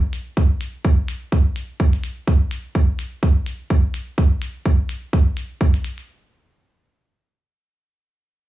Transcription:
0.13 closed hi-hat medium
0.37 kick loud
0.61 closed hi-hat medium
0.85 kick loud
1.08 closed hi-hat medium
1.32 kick loud
1.56 closed hi-hat medium
1.80 kick loud
1.93 closed hi-hat soft
2.04 closed hi-hat medium
2.27 kick loud
2.51 closed hi-hat medium
2.75 kick loud
2.99 closed hi-hat medium
3.23 kick loud
3.46 closed hi-hat medium
3.70 kick loud
3.94 closed hi-hat medium
4.18 kick loud
4.42 closed hi-hat medium
4.65 kick loud
4.89 closed hi-hat medium
5.13 kick loud
5.37 closed hi-hat medium
5.61 kick loud
5.74 closed hi-hat soft
5.84 closed hi-hat medium
5.98 closed hi-hat soft

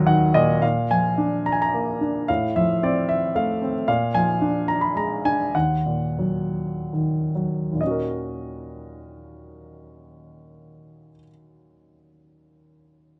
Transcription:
0.00 0.59 D#2 medium
0.00 0.31 A#2 medium
0.00 0.07 D#3 medium
0.00 0.60 F#3 medium
0.00 0.31 F#4 soft
0.00 0.31 A#4 medium
0.00 0.30 D#5 medium
0.07 0.61 D#3 medium
0.07 0.33 F#5 medium
0.34 0.61 A#2 medium
0.34 0.61 D#5 medium
0.62 2.25 A#2 soft
0.62 0.91 F5 medium
0.91 1.98 F3 soft
0.91 1.48 G#5 medium
1.18 1.99 D4 soft
1.46 1.53 A#5 medium
1.52 1.60 G#5 medium
1.62 2.25 A#5 medium
1.74 2.27 A#3 soft
2.01 2.28 D4 soft
2.28 3.84 A2 soft
2.28 2.57 F5 medium
2.56 3.58 F3 soft
2.56 2.83 E5 medium
2.83 3.61 C4 soft
2.83 3.10 D5 medium
3.09 3.33 E5 medium
3.35 3.86 A3 soft
3.35 3.72 F5 medium
3.62 3.87 C4 soft
3.88 5.51 A#2 medium
3.88 4.13 F5 medium
4.14 5.22 F3 soft
4.14 4.70 G#5 medium
4.41 5.23 D4 soft
4.68 4.82 A#5 medium
4.81 4.95 B5 medium
4.96 5.53 G#3 soft
4.96 5.23 A#5 medium
5.25 5.54 D4 soft
5.25 5.53 G#5 medium
5.54 7.70 D#2 soft
5.54 6.89 F#5 medium
5.86 7.31 A#2 soft
6.19 7.34 F#3 soft
6.93 7.77 D#3 soft
7.35 7.79 F#3 soft
7.72 11.10 D#2 soft
7.72 11.13 A#2 soft
7.79 11.17 D#3 soft
7.79 11.19 D#5 soft
7.83 11.21 C#4 soft
7.83 11.25 F#4 soft
7.91 11.29 A#4 soft

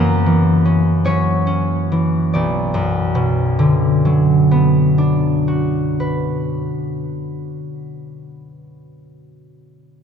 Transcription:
0.00 2.40 F#2 medium
0.00 1.04 F#3 medium
0.00 2.40 A#3 medium
0.00 0.64 C#4 medium
0.00 2.40 A#4 medium
0.00 1.04 C#5 medium
0.26 1.90 E3 soft
0.65 1.05 C#4 soft
1.05 4.04 F#3 soft
1.05 1.46 C#4 medium
1.05 2.40 C#5 medium
1.47 2.40 C#4 soft
1.92 2.39 E3 soft
2.33 6.25 B1 medium
2.33 5.93 D5 soft
2.74 6.64 F#2 medium
3.15 7.05 B2 medium
3.59 7.49 D3 medium
4.05 7.74 F#3 soft
4.51 8.11 B3 medium
4.98 8.57 D4 soft
5.48 8.84 F#4 soft
6.00 8.85 B4 soft

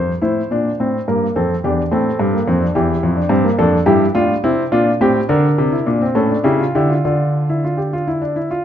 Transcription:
0.00 0.11 F2 medium
0.00 0.19 F4 medium
0.00 0.11 C5 medium
0.22 0.40 A2 medium
0.22 0.39 E4 medium
0.22 1.05 C5 medium
0.51 0.68 A#2 medium
0.51 0.69 D4 medium
0.80 0.97 A2 medium
0.80 0.97 C4 medium
1.08 1.25 G2 medium
1.08 1.25 A#3 medium
1.08 1.25 A#4 medium
1.36 1.53 F2 medium
1.36 1.53 C4 medium
1.36 1.53 A4 medium
1.64 1.81 E2 medium
1.64 1.81 D4 medium
1.64 1.81 G4 medium
1.91 2.09 A2 medium
1.91 2.32 C4 medium
1.91 2.73 A4 medium
2.19 2.37 G2 medium
2.34 2.47 A#3 medium
2.48 2.65 F2 medium
2.48 2.61 C4 medium
2.60 2.74 D4 medium
2.75 2.93 E2 medium
2.75 3.16 E4 medium
2.75 3.57 G4 medium
3.03 3.21 F2 medium
3.17 3.31 D4 medium
3.29 3.48 G2 medium
3.29 3.44 C4 medium
3.44 3.59 A#3 medium
3.58 3.76 F2 medium
3.58 3.76 D4 medium
3.58 3.77 A4 medium
3.86 4.04 G2 medium
3.86 4.04 E4 medium
3.86 4.04 G4 medium
4.15 4.33 A2 medium
4.15 4.33 D4 medium
4.15 4.33 F4 medium
4.44 4.62 C3 medium
4.44 4.62 C4 medium
4.44 4.62 E4 medium
4.72 4.90 A#2 medium
4.72 4.90 D4 medium
4.72 4.90 F4 medium
5.01 5.19 A2 medium
5.01 5.19 C4 medium
5.01 5.19 G4 medium
5.29 5.47 D3 medium
5.29 5.71 D4 medium
5.29 6.14 A#4 medium
5.58 5.76 C3 medium
5.72 5.87 E4 medium
5.86 6.05 A#2 medium
5.86 6.01 D4 medium
6.02 6.16 C4 medium
6.15 6.34 A2 medium
6.15 6.30 C#4 medium
6.15 6.34 A4 medium
6.30 6.44 D4 medium
6.44 6.63 C#3 medium
6.44 6.59 E4 medium
6.44 6.63 G4 medium
6.60 6.74 F4 medium
6.75 6.93 D3 medium
6.75 6.93 E4 medium
6.75 6.89 G4 medium
6.89 7.03 F4 medium
7.05 8.47 D3 medium
7.05 7.48 D4 medium
7.05 7.63 F4 medium
7.50 7.63 E4 medium
7.65 7.78 F4 medium
7.77 7.92 G4 medium
7.93 8.07 F4 medium
8.08 8.22 E4 medium
8.22 8.36 D4 medium
8.36 8.50 E4 medium
8.51 8.65 F4 medium

